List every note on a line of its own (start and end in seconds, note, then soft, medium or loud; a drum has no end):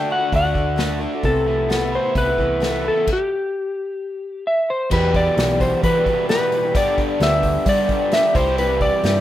0.00 0.54 D3 medium
0.00 0.77 A3 medium
0.00 0.32 D4 medium
0.00 0.10 A4 medium
0.00 0.12 G5 medium
0.08 0.20 D3 medium
0.08 0.21 A3 medium
0.08 0.20 D4 medium
0.08 0.17 F#4 medium
0.12 0.34 F#5 medium
0.19 0.44 A3 soft
0.19 0.43 D4 soft
0.19 0.41 F#4 soft
0.32 1.05 D2 medium
0.32 1.00 D4 medium
0.32 0.99 F#5 medium
0.32 kick medium
0.32 open hi-hat soft
0.42 0.53 A3 soft
0.42 0.54 D4 soft
0.42 0.54 F#4 soft
0.53 0.75 D3 soft
0.53 0.76 A3 medium
0.53 0.76 D4 medium
0.53 0.77 F#4 medium
0.53 kick medium
0.76 0.99 D3 medium
0.76 1.00 A3 medium
0.76 1.01 D4 medium
0.76 1.01 F#4 medium
0.76 snare loud
0.76 open hi-hat soft
1.00 1.12 D3 medium
1.00 1.12 A3 medium
1.00 1.13 D4 medium
1.00 1.11 F#4 medium
1.12 1.23 A3 soft
1.12 1.24 D4 soft
1.12 1.24 F#4 soft
1.23 1.96 C2 medium
1.23 1.68 C3 medium
1.23 1.69 E3 medium
1.23 1.69 A3 medium
1.23 1.69 B3 medium
1.23 1.70 E4 medium
1.23 1.95 A4 medium
1.23 kick loud
1.23 open hi-hat soft
1.47 2.61 A3 medium
1.69 1.81 C3 medium
1.69 1.81 E3 medium
1.69 1.81 A3 medium
1.69 1.82 B3 medium
1.69 1.80 E4 medium
1.69 snare medium
1.69 open hi-hat soft
1.81 1.94 A3 soft
1.81 1.93 B3 soft
1.81 1.93 E4 soft
1.92 2.05 E3 medium
1.92 2.05 A3 medium
1.92 2.05 B3 medium
1.92 3.07 E4 medium
1.92 2.17 C5 medium
1.97 2.03 E4 medium
2.05 2.29 A3 soft
2.05 2.28 B3 soft
2.05 2.26 E4 soft
2.15 2.88 C2 medium
2.15 2.84 B3 medium
2.15 2.87 B4 medium
2.15 kick medium
2.15 open hi-hat soft
2.27 2.38 A3 soft
2.27 2.40 B3 soft
2.27 2.38 E4 soft
2.38 2.59 E3 soft
2.38 2.60 A3 medium
2.38 2.61 B3 medium
2.38 2.61 E4 medium
2.38 kick medium
2.60 2.84 C3 medium
2.60 2.82 E3 medium
2.60 2.83 A3 medium
2.60 2.84 B3 medium
2.60 2.84 E4 medium
2.60 snare medium
2.60 open hi-hat soft
2.83 2.95 E3 soft
2.83 2.96 A3 soft
2.83 2.95 B3 medium
2.83 2.93 E4 medium
2.88 3.10 A4 medium
2.94 3.08 A3 soft
2.94 3.07 B3 soft
2.94 3.06 E4 soft
3.07 kick medium
3.07 crash medium
3.13 4.44 G4 medium
4.47 4.70 E5 medium
4.70 4.92 C5 medium
4.90 5.36 E2 medium
4.90 5.28 E2 medium
4.90 5.37 B2 medium
4.90 5.37 E3 medium
4.90 5.38 G3 medium
4.90 5.39 B3 medium
4.90 5.39 G4 medium
4.90 5.15 B4 medium
4.90 kick loud
4.90 crash medium
5.14 5.62 D5 medium
5.14 kick medium
5.14 open hi-hat soft
5.37 5.74 B1 medium
5.37 5.49 E2 medium
5.37 5.49 B2 medium
5.37 5.49 E3 medium
5.37 5.49 G3 medium
5.37 5.49 B3 medium
5.37 5.47 G4 medium
5.37 snare medium
5.37 open hi-hat medium
5.48 5.59 E3 soft
5.48 5.60 G3 soft
5.48 5.61 B3 medium
5.48 5.60 G4 soft
5.60 5.94 E3 medium
5.60 5.95 G3 medium
5.60 5.95 B3 medium
5.60 5.94 G4 medium
5.60 5.84 C5 medium
5.60 kick medium
5.60 open hi-hat medium
5.83 6.73 E2 medium
5.83 6.73 B2 medium
5.83 6.75 E3 medium
5.83 6.74 E3 medium
5.83 6.76 G3 medium
5.83 6.74 B3 medium
5.83 6.77 G4 medium
5.83 6.28 B4 medium
5.83 kick loud
5.83 open hi-hat medium
5.95 6.05 E3 soft
5.95 6.06 G3 soft
5.95 6.07 B3 soft
5.95 6.06 G4 soft
6.06 6.29 E3 soft
6.06 6.29 G3 medium
6.06 6.30 B3 medium
6.06 6.30 G4 medium
6.06 kick medium
6.06 open hi-hat soft
6.29 6.52 E2 medium
6.29 6.52 B2 medium
6.29 6.52 E3 medium
6.29 6.52 G3 medium
6.29 6.53 B3 medium
6.29 6.53 G4 medium
6.29 6.76 B4 medium
6.29 snare loud
6.29 open hi-hat medium
6.52 6.64 E3 medium
6.52 6.64 G3 medium
6.52 6.65 B3 medium
6.52 6.64 G4 medium
6.52 open hi-hat soft
6.65 6.77 E3 soft
6.65 6.76 G3 soft
6.65 6.76 B3 soft
6.65 6.75 G4 soft
6.75 7.11 G2 medium
6.75 7.20 G2 medium
6.75 7.21 D3 medium
6.75 7.21 G3 medium
6.75 7.21 B3 medium
6.75 7.22 D4 medium
6.75 7.22 G4 medium
6.75 7.22 D5 medium
6.75 kick loud
6.75 open hi-hat medium
6.98 kick medium
6.98 open hi-hat soft
7.20 7.57 D2 medium
7.20 7.32 G2 medium
7.20 7.33 D3 medium
7.20 7.32 G3 medium
7.20 7.33 B3 medium
7.20 7.33 D4 medium
7.20 7.32 G4 medium
7.20 7.69 E5 medium
7.20 snare medium
7.20 open hi-hat medium
7.33 7.43 G3 soft
7.33 7.44 B3 soft
7.33 7.45 D4 soft
7.33 7.44 G4 medium
7.43 7.78 G3 medium
7.43 7.79 B3 medium
7.43 7.78 D4 medium
7.43 kick medium
7.43 open hi-hat soft
7.47 7.77 G4 medium
7.66 8.34 G2 medium
7.66 8.34 D3 medium
7.66 8.21 G3 medium
7.66 8.35 G3 medium
7.66 8.35 B3 medium
7.66 8.35 D4 medium
7.66 8.37 G4 medium
7.66 8.15 D5 medium
7.66 kick loud
7.66 open hi-hat medium
7.79 7.88 G3 soft
7.79 7.90 B3 soft
7.79 7.90 D4 soft
7.79 7.90 G4 soft
7.89 8.12 G3 medium
7.89 8.13 B3 medium
7.89 8.13 D4 medium
7.89 8.13 G4 medium
7.89 kick medium
7.89 open hi-hat soft
8.12 8.36 G2 medium
8.12 8.36 D3 medium
8.12 8.34 G3 medium
8.12 8.36 B3 medium
8.12 8.36 D4 medium
8.12 8.36 E5 medium
8.12 snare loud
8.12 open hi-hat medium
8.16 8.36 G4 medium
8.34 8.90 C2 medium
8.34 9.21 C3 medium
8.34 8.46 E3 medium
8.34 8.47 G3 medium
8.34 8.46 E4 medium
8.34 8.44 G4 medium
8.34 8.58 C5 medium
8.34 kick loud
8.34 open hi-hat medium
8.45 8.58 G3 soft
8.45 8.58 E4 soft
8.45 8.57 G4 medium
8.58 9.02 C3 medium
8.58 9.03 E3 medium
8.58 9.04 G3 medium
8.58 9.04 E4 medium
8.58 9.05 G4 medium
8.58 8.80 B4 medium
8.58 open hi-hat medium
8.81 9.21 D5 medium
8.81 kick medium
8.81 open hi-hat soft
9.03 9.21 G2 medium
9.03 9.15 C3 medium
9.03 9.15 E3 medium
9.03 9.15 G3 medium
9.03 9.15 E4 medium
9.03 9.14 G4 medium
9.03 snare medium
9.03 open hi-hat soft
9.15 9.21 G3 soft
9.15 9.21 E4 soft
9.15 9.21 G4 medium